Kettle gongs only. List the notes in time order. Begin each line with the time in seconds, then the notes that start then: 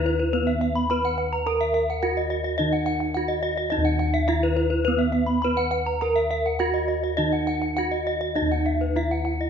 Already playing: D#2 D#4
0.90 E4
1.46 A#4
2.03 E4
2.60 D#3
3.17 E4
3.73 D#4
3.78 D#2
5.45 E4
6.02 A#4
6.61 E4
7.19 D#3
7.78 E4
8.37 D#4
8.42 D#2
8.97 E4